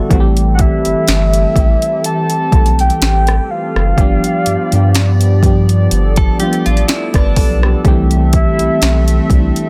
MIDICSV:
0, 0, Header, 1, 7, 480
1, 0, Start_track
1, 0, Key_signature, 0, "minor"
1, 0, Tempo, 967742
1, 52, Time_signature, 4, 2, 24, 8
1, 4808, End_track
2, 0, Start_track
2, 0, Title_t, "Soft synth lead"
2, 0, Program_c, 0, 80
2, 270, Note_on_c, 0, 78, 67
2, 301, Note_on_c, 0, 76, 116
2, 309, Note_off_c, 0, 78, 0
2, 1017, Note_off_c, 0, 76, 0
2, 1020, Note_on_c, 0, 81, 113
2, 1366, Note_off_c, 0, 81, 0
2, 1389, Note_on_c, 0, 79, 113
2, 1739, Note_on_c, 0, 77, 108
2, 1747, Note_off_c, 0, 79, 0
2, 2696, Note_off_c, 0, 77, 0
2, 4141, Note_on_c, 0, 76, 127
2, 4597, Note_off_c, 0, 76, 0
2, 4808, End_track
3, 0, Start_track
3, 0, Title_t, "Clean electric guitar"
3, 0, Program_c, 1, 27
3, 3063, Note_on_c, 1, 69, 76
3, 3167, Note_off_c, 1, 69, 0
3, 3174, Note_on_c, 1, 67, 79
3, 3296, Note_off_c, 1, 67, 0
3, 3303, Note_on_c, 1, 65, 88
3, 3407, Note_off_c, 1, 65, 0
3, 3413, Note_on_c, 1, 64, 84
3, 3543, Note_off_c, 1, 64, 0
3, 3543, Note_on_c, 1, 62, 76
3, 3875, Note_off_c, 1, 62, 0
3, 4808, End_track
4, 0, Start_track
4, 0, Title_t, "Analog synth pad"
4, 0, Program_c, 2, 89
4, 0, Note_on_c, 2, 69, 90
4, 51, Note_on_c, 2, 52, 78
4, 52, Note_on_c, 2, 60, 74
4, 52, Note_on_c, 2, 67, 71
4, 1952, Note_off_c, 2, 69, 0
4, 1953, Note_off_c, 2, 52, 0
4, 1953, Note_off_c, 2, 60, 0
4, 1953, Note_off_c, 2, 67, 0
4, 1972, Note_on_c, 2, 59, 77
4, 1973, Note_on_c, 2, 53, 80
4, 1973, Note_on_c, 2, 67, 70
4, 1973, Note_on_c, 2, 74, 87
4, 2923, Note_off_c, 2, 67, 0
4, 2933, Note_on_c, 2, 69, 69
4, 3873, Note_off_c, 2, 53, 0
4, 3873, Note_off_c, 2, 59, 0
4, 3873, Note_off_c, 2, 74, 0
4, 3891, Note_on_c, 2, 60, 73
4, 3891, Note_on_c, 2, 76, 89
4, 3892, Note_on_c, 2, 57, 82
4, 4808, Note_off_c, 2, 57, 0
4, 4808, Note_off_c, 2, 60, 0
4, 4808, Note_off_c, 2, 69, 0
4, 4808, Note_off_c, 2, 76, 0
4, 4808, End_track
5, 0, Start_track
5, 0, Title_t, "FM electric piano"
5, 0, Program_c, 3, 5
5, 0, Control_c, 3, 64, 127
5, 0, Note_on_c, 3, 50, 89
5, 0, Note_on_c, 3, 55, 83
5, 0, Note_on_c, 3, 57, 83
5, 0, Note_on_c, 3, 59, 82
5, 0, Note_on_c, 3, 66, 56
5, 0, Note_on_c, 3, 67, 58
5, 0, Note_on_c, 3, 69, 62
5, 0, Note_on_c, 3, 74, 60
5, 0, Note_on_c, 3, 76, 70
5, 0, Note_on_c, 3, 78, 73
5, 46, Note_on_c, 3, 52, 112
5, 52, Note_off_c, 3, 55, 0
5, 52, Note_on_c, 3, 55, 102
5, 57, Note_off_c, 3, 57, 0
5, 57, Note_on_c, 3, 57, 109
5, 60, Control_c, 3, 64, 0
5, 62, Note_off_c, 3, 50, 0
5, 62, Note_off_c, 3, 66, 0
5, 62, Note_off_c, 3, 76, 0
5, 62, Note_off_c, 3, 78, 0
5, 62, Note_on_c, 3, 60, 109
5, 64, Note_off_c, 3, 59, 0
5, 64, Note_off_c, 3, 67, 0
5, 64, Note_off_c, 3, 69, 0
5, 68, Note_on_c, 3, 66, 105
5, 95, Note_off_c, 3, 66, 0
5, 100, Note_on_c, 3, 67, 125
5, 140, Control_c, 3, 64, 127
5, 173, Note_off_c, 3, 74, 0
5, 678, Note_off_c, 3, 52, 0
5, 681, Note_off_c, 3, 55, 0
5, 683, Note_off_c, 3, 57, 0
5, 686, Note_off_c, 3, 60, 0
5, 705, Note_off_c, 3, 67, 0
5, 766, Note_on_c, 3, 52, 72
5, 771, Note_on_c, 3, 55, 68
5, 777, Note_on_c, 3, 57, 66
5, 782, Note_on_c, 3, 60, 72
5, 787, Note_on_c, 3, 67, 86
5, 1188, Note_off_c, 3, 52, 0
5, 1191, Note_off_c, 3, 55, 0
5, 1194, Note_off_c, 3, 57, 0
5, 1196, Note_off_c, 3, 60, 0
5, 1199, Note_off_c, 3, 67, 0
5, 1247, Note_on_c, 3, 52, 77
5, 1252, Note_on_c, 3, 55, 71
5, 1257, Note_on_c, 3, 57, 69
5, 1263, Note_on_c, 3, 60, 71
5, 1268, Note_on_c, 3, 69, 82
5, 1878, Note_off_c, 3, 52, 0
5, 1881, Note_off_c, 3, 55, 0
5, 1884, Note_off_c, 3, 57, 0
5, 1886, Note_off_c, 3, 60, 0
5, 1889, Note_off_c, 3, 69, 0
5, 1966, Note_on_c, 3, 53, 98
5, 1972, Note_on_c, 3, 55, 86
5, 1977, Note_on_c, 3, 59, 92
5, 1979, Control_c, 3, 64, 0
5, 1983, Note_on_c, 3, 62, 92
5, 1988, Note_on_c, 3, 67, 112
5, 2059, Control_c, 3, 64, 127
5, 2285, Note_off_c, 3, 53, 0
5, 2288, Note_off_c, 3, 55, 0
5, 2291, Note_off_c, 3, 59, 0
5, 2294, Note_off_c, 3, 62, 0
5, 2296, Note_off_c, 3, 67, 0
5, 2337, Note_on_c, 3, 53, 84
5, 2343, Note_on_c, 3, 55, 74
5, 2348, Note_on_c, 3, 59, 77
5, 2353, Note_on_c, 3, 62, 75
5, 2358, Note_on_c, 3, 67, 88
5, 2644, Note_off_c, 3, 53, 0
5, 2647, Note_off_c, 3, 55, 0
5, 2650, Note_off_c, 3, 59, 0
5, 2652, Note_off_c, 3, 62, 0
5, 2655, Note_off_c, 3, 67, 0
5, 2686, Note_on_c, 3, 53, 91
5, 2692, Note_on_c, 3, 55, 79
5, 2697, Note_on_c, 3, 59, 78
5, 2703, Note_on_c, 3, 62, 79
5, 2708, Note_on_c, 3, 67, 96
5, 3108, Note_off_c, 3, 53, 0
5, 3111, Note_off_c, 3, 55, 0
5, 3114, Note_off_c, 3, 59, 0
5, 3117, Note_off_c, 3, 62, 0
5, 3119, Note_off_c, 3, 67, 0
5, 3167, Note_on_c, 3, 53, 88
5, 3172, Note_on_c, 3, 55, 81
5, 3178, Note_on_c, 3, 57, 69
5, 3183, Note_on_c, 3, 62, 80
5, 3188, Note_on_c, 3, 65, 104
5, 3210, Note_off_c, 3, 57, 0
5, 3210, Note_on_c, 3, 59, 82
5, 3415, Note_off_c, 3, 65, 0
5, 3418, Note_off_c, 3, 62, 0
5, 3418, Note_on_c, 3, 74, 68
5, 3421, Note_on_c, 3, 65, 55
5, 3431, Note_off_c, 3, 59, 0
5, 3538, Note_off_c, 3, 74, 0
5, 3540, Note_off_c, 3, 65, 0
5, 3547, Note_on_c, 3, 71, 76
5, 3551, Note_on_c, 3, 62, 61
5, 3589, Note_off_c, 3, 53, 0
5, 3591, Note_off_c, 3, 55, 0
5, 3650, Note_off_c, 3, 71, 0
5, 3651, Note_off_c, 3, 62, 0
5, 3657, Note_on_c, 3, 69, 71
5, 3778, Note_off_c, 3, 69, 0
5, 3787, Note_on_c, 3, 67, 65
5, 3789, Note_on_c, 3, 59, 57
5, 3886, Note_on_c, 3, 50, 95
5, 3891, Note_on_c, 3, 55, 113
5, 3897, Note_on_c, 3, 57, 117
5, 3898, Control_c, 3, 64, 0
5, 3902, Note_off_c, 3, 67, 0
5, 3903, Note_on_c, 3, 60, 110
5, 3908, Note_on_c, 3, 67, 127
5, 3918, Note_on_c, 3, 52, 124
5, 3924, Note_off_c, 3, 50, 0
5, 3985, Control_c, 3, 64, 127
5, 4014, Note_off_c, 3, 59, 0
5, 4520, Note_off_c, 3, 55, 0
5, 4523, Note_off_c, 3, 57, 0
5, 4526, Note_off_c, 3, 60, 0
5, 4529, Note_off_c, 3, 67, 0
5, 4534, Note_off_c, 3, 52, 0
5, 4607, Note_on_c, 3, 52, 81
5, 4612, Note_on_c, 3, 55, 70
5, 4618, Note_on_c, 3, 57, 69
5, 4623, Note_on_c, 3, 60, 67
5, 4628, Note_on_c, 3, 62, 68
5, 4655, Note_off_c, 3, 62, 0
5, 4661, Note_on_c, 3, 64, 82
5, 4808, Note_off_c, 3, 52, 0
5, 4808, Note_off_c, 3, 55, 0
5, 4808, Note_off_c, 3, 57, 0
5, 4808, Note_off_c, 3, 60, 0
5, 4808, Note_off_c, 3, 64, 0
5, 4808, End_track
6, 0, Start_track
6, 0, Title_t, "Sub bass"
6, 0, Program_c, 4, 38
6, 53, Note_on_c, 4, 33, 110
6, 344, Note_off_c, 4, 33, 0
6, 424, Note_on_c, 4, 31, 51
6, 467, Note_off_c, 4, 31, 0
6, 535, Note_on_c, 4, 31, 96
6, 723, Note_off_c, 4, 31, 0
6, 773, Note_on_c, 4, 33, 90
6, 875, Note_off_c, 4, 33, 0
6, 1252, Note_on_c, 4, 35, 86
6, 1441, Note_off_c, 4, 35, 0
6, 1494, Note_on_c, 4, 33, 94
6, 1682, Note_off_c, 4, 33, 0
6, 1863, Note_on_c, 4, 30, 96
6, 1949, Note_off_c, 4, 30, 0
6, 1973, Note_on_c, 4, 31, 115
6, 2075, Note_off_c, 4, 31, 0
6, 2214, Note_on_c, 4, 43, 50
6, 2265, Note_off_c, 4, 43, 0
6, 2344, Note_on_c, 4, 43, 99
6, 2914, Note_off_c, 4, 43, 0
6, 2934, Note_on_c, 4, 31, 101
6, 3122, Note_off_c, 4, 31, 0
6, 3304, Note_on_c, 4, 33, 81
6, 3390, Note_off_c, 4, 33, 0
6, 3543, Note_on_c, 4, 31, 86
6, 3654, Note_on_c, 4, 35, 102
6, 3662, Note_off_c, 4, 31, 0
6, 3842, Note_off_c, 4, 35, 0
6, 3893, Note_on_c, 4, 36, 113
6, 4184, Note_off_c, 4, 36, 0
6, 4264, Note_on_c, 4, 35, 51
6, 4307, Note_off_c, 4, 35, 0
6, 4373, Note_on_c, 4, 35, 95
6, 4562, Note_off_c, 4, 35, 0
6, 4612, Note_on_c, 4, 36, 88
6, 4714, Note_off_c, 4, 36, 0
6, 4808, End_track
7, 0, Start_track
7, 0, Title_t, "Drums"
7, 52, Note_on_c, 9, 36, 108
7, 54, Note_on_c, 9, 42, 65
7, 102, Note_off_c, 9, 36, 0
7, 103, Note_off_c, 9, 42, 0
7, 182, Note_on_c, 9, 42, 57
7, 231, Note_off_c, 9, 42, 0
7, 292, Note_on_c, 9, 42, 75
7, 294, Note_on_c, 9, 36, 89
7, 341, Note_off_c, 9, 42, 0
7, 344, Note_off_c, 9, 36, 0
7, 422, Note_on_c, 9, 42, 52
7, 471, Note_off_c, 9, 42, 0
7, 533, Note_on_c, 9, 42, 65
7, 538, Note_on_c, 9, 38, 117
7, 583, Note_off_c, 9, 42, 0
7, 587, Note_off_c, 9, 38, 0
7, 662, Note_on_c, 9, 42, 54
7, 712, Note_off_c, 9, 42, 0
7, 772, Note_on_c, 9, 36, 84
7, 775, Note_on_c, 9, 42, 67
7, 822, Note_off_c, 9, 36, 0
7, 825, Note_off_c, 9, 42, 0
7, 903, Note_on_c, 9, 42, 48
7, 953, Note_off_c, 9, 42, 0
7, 1014, Note_on_c, 9, 42, 75
7, 1063, Note_off_c, 9, 42, 0
7, 1139, Note_on_c, 9, 42, 50
7, 1188, Note_off_c, 9, 42, 0
7, 1252, Note_on_c, 9, 36, 100
7, 1253, Note_on_c, 9, 42, 58
7, 1301, Note_off_c, 9, 36, 0
7, 1303, Note_off_c, 9, 42, 0
7, 1318, Note_on_c, 9, 42, 49
7, 1368, Note_off_c, 9, 42, 0
7, 1383, Note_on_c, 9, 42, 43
7, 1433, Note_off_c, 9, 42, 0
7, 1438, Note_on_c, 9, 42, 35
7, 1488, Note_off_c, 9, 42, 0
7, 1496, Note_on_c, 9, 42, 74
7, 1499, Note_on_c, 9, 38, 116
7, 1546, Note_off_c, 9, 42, 0
7, 1549, Note_off_c, 9, 38, 0
7, 1622, Note_on_c, 9, 42, 48
7, 1629, Note_on_c, 9, 37, 96
7, 1672, Note_off_c, 9, 42, 0
7, 1679, Note_off_c, 9, 37, 0
7, 1867, Note_on_c, 9, 37, 68
7, 1916, Note_off_c, 9, 37, 0
7, 1973, Note_on_c, 9, 36, 116
7, 1974, Note_on_c, 9, 42, 65
7, 2022, Note_off_c, 9, 36, 0
7, 2024, Note_off_c, 9, 42, 0
7, 2103, Note_on_c, 9, 42, 54
7, 2152, Note_off_c, 9, 42, 0
7, 2212, Note_on_c, 9, 42, 76
7, 2261, Note_off_c, 9, 42, 0
7, 2342, Note_on_c, 9, 42, 52
7, 2391, Note_off_c, 9, 42, 0
7, 2453, Note_on_c, 9, 42, 69
7, 2457, Note_on_c, 9, 38, 117
7, 2503, Note_off_c, 9, 42, 0
7, 2507, Note_off_c, 9, 38, 0
7, 2582, Note_on_c, 9, 42, 55
7, 2632, Note_off_c, 9, 42, 0
7, 2692, Note_on_c, 9, 36, 82
7, 2696, Note_on_c, 9, 42, 64
7, 2741, Note_off_c, 9, 36, 0
7, 2745, Note_off_c, 9, 42, 0
7, 2822, Note_on_c, 9, 42, 48
7, 2872, Note_off_c, 9, 42, 0
7, 2933, Note_on_c, 9, 42, 76
7, 2982, Note_off_c, 9, 42, 0
7, 3057, Note_on_c, 9, 42, 52
7, 3062, Note_on_c, 9, 36, 96
7, 3107, Note_off_c, 9, 42, 0
7, 3112, Note_off_c, 9, 36, 0
7, 3172, Note_on_c, 9, 42, 63
7, 3222, Note_off_c, 9, 42, 0
7, 3238, Note_on_c, 9, 42, 50
7, 3287, Note_off_c, 9, 42, 0
7, 3302, Note_on_c, 9, 42, 44
7, 3352, Note_off_c, 9, 42, 0
7, 3357, Note_on_c, 9, 42, 33
7, 3407, Note_off_c, 9, 42, 0
7, 3415, Note_on_c, 9, 42, 71
7, 3418, Note_on_c, 9, 38, 114
7, 3464, Note_off_c, 9, 42, 0
7, 3467, Note_off_c, 9, 38, 0
7, 3541, Note_on_c, 9, 42, 50
7, 3542, Note_on_c, 9, 36, 86
7, 3548, Note_on_c, 9, 37, 94
7, 3591, Note_off_c, 9, 42, 0
7, 3592, Note_off_c, 9, 36, 0
7, 3598, Note_off_c, 9, 37, 0
7, 3653, Note_on_c, 9, 36, 91
7, 3653, Note_on_c, 9, 46, 71
7, 3702, Note_off_c, 9, 46, 0
7, 3703, Note_off_c, 9, 36, 0
7, 3786, Note_on_c, 9, 37, 70
7, 3835, Note_off_c, 9, 37, 0
7, 3892, Note_on_c, 9, 36, 122
7, 3893, Note_on_c, 9, 42, 68
7, 3942, Note_off_c, 9, 36, 0
7, 3943, Note_off_c, 9, 42, 0
7, 4021, Note_on_c, 9, 42, 55
7, 4071, Note_off_c, 9, 42, 0
7, 4131, Note_on_c, 9, 42, 73
7, 4134, Note_on_c, 9, 36, 85
7, 4180, Note_off_c, 9, 42, 0
7, 4183, Note_off_c, 9, 36, 0
7, 4262, Note_on_c, 9, 42, 53
7, 4311, Note_off_c, 9, 42, 0
7, 4373, Note_on_c, 9, 42, 67
7, 4378, Note_on_c, 9, 38, 118
7, 4423, Note_off_c, 9, 42, 0
7, 4427, Note_off_c, 9, 38, 0
7, 4502, Note_on_c, 9, 42, 54
7, 4552, Note_off_c, 9, 42, 0
7, 4612, Note_on_c, 9, 36, 80
7, 4615, Note_on_c, 9, 42, 65
7, 4661, Note_off_c, 9, 36, 0
7, 4664, Note_off_c, 9, 42, 0
7, 4742, Note_on_c, 9, 42, 49
7, 4792, Note_off_c, 9, 42, 0
7, 4808, End_track
0, 0, End_of_file